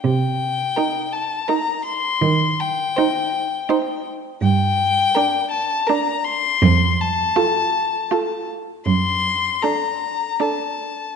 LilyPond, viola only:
\new Staff \with { instrumentName = "Viola" } { \time 3/4 \key c \dorian \tempo 4 = 81 r4 ees'4 ees'4 | r4 ees'4 ees'4 | \key g \minor r4 d'4 d'4 | r4 f'4 f'4 |
r4 d'4 d'4 | }